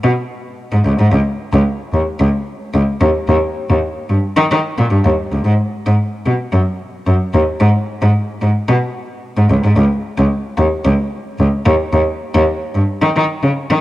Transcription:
0.04 0.12 B2 loud
0.72 0.80 G#2 medium
0.85 0.93 C#2 loud
0.99 1.07 G#2 loud
1.12 1.20 C#2 loud
1.53 1.61 C#2 loud
1.93 2.01 D#2 medium
2.20 2.28 C#2 loud
2.74 2.82 C#2 loud
3.01 3.09 D#2 loud
3.28 3.36 D#2 loud
3.70 3.78 D#2 medium
4.09 4.17 G2 medium
4.36 4.44 D#3 loud
4.51 4.59 D#3 medium
4.78 4.86 A#2 medium
4.91 4.99 G2 loud
5.05 5.13 D#2 medium
5.32 5.40 C#2 medium
5.45 5.53 G#2 loud
5.86 5.94 G#2 loud
6.26 6.34 B2 medium
6.53 6.61 F#2 medium
7.07 7.15 F#2 medium
7.34 7.42 D#2 loud
7.61 7.69 G#2 loud
8.02 8.10 G#2 loud
8.42 8.50 G#2 medium
8.68 8.76 B2 loud
9.37 9.45 G#2 medium
9.50 9.58 C#2 loud
9.64 9.72 G#2 medium
9.77 9.85 C#2 loud
10.18 10.26 C#2 loud
10.58 10.66 D#2 medium
10.85 10.93 C#2 loud
11.39 11.47 C#2 loud
11.66 11.74 D#2 loud
11.93 12.01 D#2 loud
12.35 12.43 D#2 loud
12.75 12.83 G2 medium
13.02 13.10 D#3 medium
13.16 13.24 D#3 loud
13.43 13.51 C#3 medium
13.70 13.78 D#3 medium

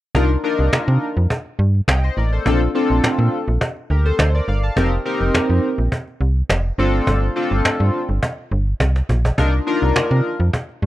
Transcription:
0.15 0.37 C2 medium
0.15 0.29 D4 medium
0.15 0.29 D#4 medium
0.15 0.29 F4 medium
0.15 0.29 A#4 medium
0.15 cajon bass loud
0.43 1.07 D4 medium
0.43 1.07 D#4 medium
0.43 1.07 F4 medium
0.43 1.07 A#4 medium
0.43 cajon slap soft
0.59 0.69 C2 medium
0.59 cajon slap soft
0.73 0.79 C3 soft
0.73 cajon bass loud
0.73 cajon slap medium
0.73 cajon slap loud
0.88 0.98 C3 loud
1.01 cajon slap soft
1.16 1.27 F2 medium
1.16 cajon slap soft
1.30 cajon bass loud
1.46 cajon slap soft
1.59 1.81 G2 medium
1.59 cajon slap soft
1.75 cajon slap soft
1.88 2.10 C2 medium
1.88 2.02 D#5 medium
1.88 2.03 G5 medium
1.88 cajon bass loud
1.88 cajon slap medium
1.88 cajon slap loud
2.04 2.17 C5 medium
2.04 2.16 D#5 medium
2.04 cajon slap soft
2.17 2.39 A1 medium
2.17 2.32 A#4 medium
2.17 2.32 D5 medium
2.17 cajon slap soft
2.32 2.45 A4 medium
2.32 2.60 C5 medium
2.32 cajon slap soft
2.46 2.68 A#1 loud
2.46 2.60 C4 medium
2.46 2.60 D4 medium
2.46 2.60 F4 medium
2.46 2.60 A4 loud
2.46 cajon bass loud
2.75 3.38 C4 medium
2.75 3.38 D4 medium
2.75 3.38 F4 medium
2.75 3.38 A4 medium
2.75 cajon slap soft
2.90 3.00 A#1 medium
2.90 cajon slap soft
3.04 3.10 A#2 soft
3.04 cajon bass medium
3.04 cajon slap medium
3.04 cajon slap loud
3.19 3.29 A#2 medium
3.32 cajon slap soft
3.47 3.58 A#1 medium
3.47 cajon slap soft
3.61 cajon bass loud
3.77 cajon slap soft
3.90 4.12 D2 medium
3.90 4.05 G4 medium
3.90 4.05 A#4 medium
3.90 cajon slap soft
4.05 4.33 A4 medium
4.05 4.33 C5 medium
4.05 cajon slap soft
4.19 4.41 D2 loud
4.19 cajon bass loud
4.19 cajon slap medium
4.19 cajon slap loud
4.34 4.47 A#4 medium
4.34 4.47 D5 medium
4.34 cajon slap soft
4.48 4.70 G1 loud
4.48 4.63 D5 medium
4.48 4.62 F5 medium
4.48 cajon slap soft
4.63 4.91 F5 medium
4.63 4.90 A5 medium
4.63 cajon slap soft
4.76 4.99 F1 loud
4.76 4.90 C4 medium
4.76 4.91 D#4 medium
4.76 4.91 G4 medium
4.76 4.91 A#4 medium
4.76 cajon bass loud
4.92 cajon slap soft
5.05 5.68 C4 medium
5.05 5.69 D#4 medium
5.05 5.69 G4 medium
5.05 5.69 A#4 medium
5.05 cajon slap soft
5.21 5.31 F1 medium
5.21 cajon slap soft
5.34 5.40 F2 soft
5.34 cajon bass loud
5.34 cajon slap medium
5.34 cajon slap loud
5.50 5.60 F2 medium
5.50 cajon slap soft
5.63 cajon slap soft
5.78 5.89 A#1 medium
5.78 cajon slap soft
5.92 cajon bass loud
6.08 cajon slap soft
6.21 6.43 C2 medium
6.21 cajon slap soft
6.36 cajon slap soft
6.49 6.72 F1 medium
6.49 cajon bass loud
6.49 cajon slap medium
6.49 cajon slap loud
6.65 cajon slap soft
6.78 7.00 G1 loud
6.78 7.25 C4 medium
6.78 7.25 D4 medium
6.78 7.26 F4 medium
6.78 7.26 A4 medium
6.78 cajon slap soft
7.07 7.29 G1 loud
7.07 cajon bass loud
7.36 7.99 C4 medium
7.36 7.99 D4 medium
7.36 7.99 F4 medium
7.36 7.99 A4 medium
7.36 cajon slap soft
7.51 7.62 G1 loud
7.51 cajon slap soft
7.65 7.71 G2 soft
7.65 cajon bass medium
7.65 cajon slap medium
7.65 cajon slap loud
7.80 7.91 G2 medium
7.80 cajon slap soft
7.94 cajon slap soft
8.09 8.19 G1 medium
8.09 cajon slap soft
8.23 cajon bass loud
8.38 cajon slap soft
8.51 8.74 G1 loud
8.51 cajon slap soft
8.67 cajon slap soft
8.80 9.02 C2 medium
8.80 cajon bass loud
8.80 cajon slap medium
8.96 cajon slap medium
9.09 9.31 A#1 medium
9.09 cajon bass medium
9.25 cajon bass medium
9.38 9.60 C2 medium
9.38 9.52 D4 medium
9.38 9.52 D#4 medium
9.38 9.52 F4 medium
9.38 9.52 A#4 medium
9.38 cajon bass loud
9.54 cajon slap soft
9.67 10.30 D4 medium
9.67 10.30 D#4 medium
9.67 10.30 F4 medium
9.67 10.30 A#4 loud
9.67 cajon slap soft
9.82 9.93 C2 loud
9.96 10.02 C3 soft
9.96 cajon bass loud
9.96 cajon slap medium
9.96 cajon slap loud
10.11 10.21 C3 medium
10.25 cajon slap soft
10.40 10.50 F2 medium
10.40 cajon slap soft
10.53 cajon bass loud
10.69 cajon slap soft
10.82 10.86 G2 medium
10.82 cajon slap soft

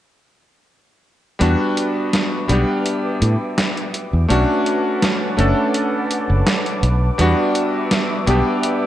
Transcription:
1.39 1.54 E2 loud
1.39 2.44 G3 medium
1.39 2.45 B3 medium
1.39 2.45 D4 medium
1.39 2.46 F#4 medium
1.39 4.27 B4 medium
1.39 4.27 E5 medium
1.39 4.27 D6 medium
1.39 closed hi-hat medium
1.77 closed hi-hat medium
2.13 snare loud
2.13 closed hi-hat medium
2.48 2.63 B1 medium
2.48 4.26 G3 medium
2.48 4.26 B3 medium
2.48 4.26 D4 medium
2.48 4.27 G4 medium
2.48 closed hi-hat medium
2.86 closed hi-hat medium
3.22 3.35 A2 medium
3.22 closed hi-hat medium
3.58 snare loud
3.58 closed hi-hat medium
3.77 closed hi-hat soft
3.94 closed hi-hat medium
4.13 4.25 E2 medium
4.28 4.44 B1 loud
4.28 5.34 A3 medium
4.28 5.34 C#4 medium
4.28 5.35 D4 medium
4.28 5.35 F#4 loud
4.28 8.87 B4 medium
4.28 7.16 F#5 medium
4.28 7.16 A5 medium
4.28 8.87 D6 medium
4.28 closed hi-hat medium
4.66 closed hi-hat medium
5.02 snare loud
5.02 closed hi-hat medium
5.37 5.52 F#1 medium
5.37 7.15 A3 medium
5.37 7.15 C#4 medium
5.37 7.15 D4 medium
5.37 7.16 A4 medium
5.37 closed hi-hat medium
5.74 closed hi-hat medium
6.11 closed hi-hat medium
6.30 6.42 F#1 loud
6.47 snare loud
6.47 closed hi-hat medium
6.66 closed hi-hat soft
6.83 7.09 B1 loud
6.83 closed hi-hat medium
7.18 7.33 E2 medium
7.18 8.23 G3 medium
7.18 8.24 B3 medium
7.18 8.24 D4 medium
7.18 8.25 F#4 loud
7.18 8.87 E5 medium
7.18 closed hi-hat medium
7.55 closed hi-hat medium
7.91 snare loud
7.91 closed hi-hat medium
8.26 8.41 B1 medium
8.26 8.87 G3 medium
8.26 8.87 B3 medium
8.26 8.87 D4 medium
8.26 8.87 G4 medium
8.26 closed hi-hat medium
8.63 closed hi-hat medium

